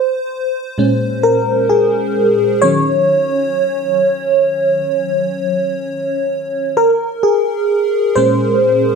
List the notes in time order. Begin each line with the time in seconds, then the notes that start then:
Already playing: C5
0.78 A#2 G#3 C#4
1.23 A#4
1.69 G#4
2.62 D#3 F#3 C#4 C#5
6.77 A#4
7.23 G#4
8.16 A#2 G#3 C#4 C5